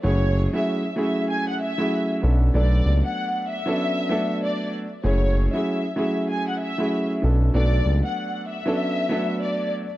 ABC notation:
X:1
M:4/4
L:1/16
Q:"Swing 16ths" 1/4=96
K:Bdor
V:1 name="Violin section"
c3 e3 e2 g f e3 z3 | d3 f3 e6 d2 z2 | c3 e3 e2 g f e3 z3 | d3 f3 e6 d2 z2 |]
V:2 name="Grand piano"
[F,A,CEG]3 [F,A,CEG]2 z [F,A,CEG]4- [F,A,CEG] [F,A,CEG]3 [F,B,CDA]2 | [F,A,B,DA]6 z [F,B,CDA]3 [F,A,B,DA]4- [F,A,B,DA] z | [F,A,CEG]3 [F,A,CEG]2 z [F,A,CEG]4- [F,A,CEG] [F,A,CEG]3 [F,B,CDA]2 | [F,A,B,DA]6 z [F,B,CDA]3 [F,A,B,DA]4- [F,A,B,DA] z |]
V:3 name="Analog synth bass" clef=bass
F,,,3 z8 z3 B,,,2 | B,,,2 C,, z12 z | F,,,3 z8 z3 B,,,2 | B,,,2 C,, z12 z |]